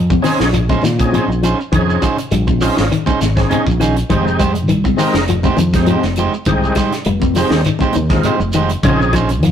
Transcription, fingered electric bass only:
0.00 0.18 F2 medium
0.40 0.75 A#1 medium
0.83 1.20 A#2 medium
1.28 1.52 A#1 medium
1.73 1.96 F2 medium
2.32 2.69 A#1 medium
2.78 2.89 G#1 medium
3.07 muted fingered electric bass stroke soft
3.21 3.45 G#1 medium
3.67 4.01 A#1 medium
4.10 4.70 F1 medium
4.70 4.93 C2 medium
5.14 5.49 F1 medium
5.58 5.95 F2 medium
6.04 6.27 F1 medium
6.47 6.70 C2 medium
7.06 7.43 F1 loud
7.51 7.63 D#2 medium
7.80 muted fingered electric bass stroke soft
7.96 8.19 D#2 medium
8.40 8.75 F1 medium
8.84 9.43 A#1 medium
9.43 9.52 F2 medium

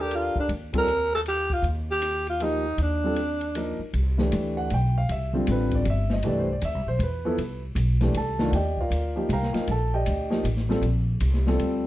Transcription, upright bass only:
0.00 0.31 D#2 medium
0.35 muted upright bass stroke soft
0.49 1.60 D#2 medium
1.62 2.74 D#2 medium
2.78 3.76 D#2 medium
3.79 muted upright bass stroke soft
3.93 4.31 C2 medium
4.33 4.70 D2 medium
4.71 5.08 B1 medium
5.09 5.46 C2 medium
5.48 5.85 A1 medium
5.86 6.23 G1 medium
6.23 6.61 C2 medium
6.62 6.74 D2 medium
6.74 6.86 C2 medium
6.86 6.98 B1 medium
6.99 7.37 E2 medium
7.38 7.75 C2 medium
7.75 8.13 B1 medium
8.14 8.51 C2 medium
8.52 8.90 D#2 medium
8.90 9.28 D2 medium
9.29 9.52 C2 medium
9.54 muted upright bass stroke soft
9.68 10.05 A#1 medium
10.07 10.43 D2 medium
10.44 10.81 A1 medium
10.81 11.19 A#1 medium
11.21 11.58 C2 medium
11.58 11.87 D2 medium

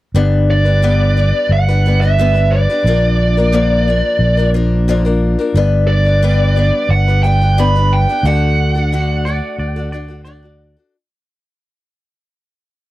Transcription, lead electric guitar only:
0.51 1.52 D5 medium
1.52 2.01 F#5 medium
2.01 2.53 E5 medium
2.51 4.49 D5 medium
5.88 6.92 D5 medium
6.90 7.23 F#5 medium
7.23 7.58 G5 medium
7.60 7.93 B5 medium
7.93 8.26 G5 medium
8.26 10.57 F#5 medium

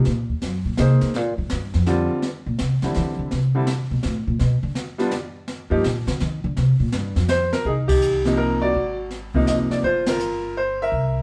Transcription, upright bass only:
0.07 0.28 A#2 medium
0.29 0.41 D#2 soft
0.43 0.65 F#2 medium
0.65 0.77 A#2 medium
0.79 1.01 C3 loud
1.16 1.38 A#2 medium
1.38 1.50 G#2 medium
1.52 1.74 G2 medium
1.74 2.08 F2 medium
2.46 2.58 A#2 medium
2.61 2.82 C3 medium
2.83 2.95 D#3 medium
2.97 3.18 E3 medium
3.19 3.31 D3 medium
3.33 3.88 C3 medium
3.91 4.03 B2 medium
4.05 4.27 A2 medium
4.27 4.39 A#2 medium
4.41 4.62 B2 medium
4.63 4.71 D3 medium
5.71 5.84 G2 medium
5.85 6.06 A#2 medium
6.07 6.20 D3 medium
6.21 6.43 D#3 loud
6.44 6.56 D3 medium
6.58 6.79 C3 medium
6.80 6.94 A#2 medium
6.94 7.17 G2 medium
7.16 7.52 F2 medium
7.65 8.70 C2 medium
8.74 9.67 G#1 medium
9.70 muted upright bass stroke soft
9.83 10.88 G1 medium
10.92 11.22 C2 medium

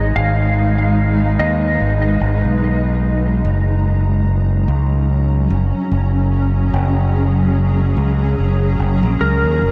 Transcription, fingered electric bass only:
0.00 0.12 G#1 medium
0.16 1.36 G#1 loud
1.39 1.76 D#2 medium
1.80 2.20 G#1 medium
2.21 2.42 G#1 medium
2.45 3.41 B1 medium
3.45 4.65 F#1 loud
4.68 5.47 C#2 medium
5.50 5.71 F#1 medium
5.91 6.70 F#1 medium
6.73 7.93 F#1 loud
7.97 8.34 C#2 medium
8.38 8.79 F#1 medium
8.79 9.00 F#1 medium
9.03 9.20 A#1 medium
9.21 9.41 C#2 medium
9.44 9.59 D#2 medium
9.62 9.72 F#1 medium

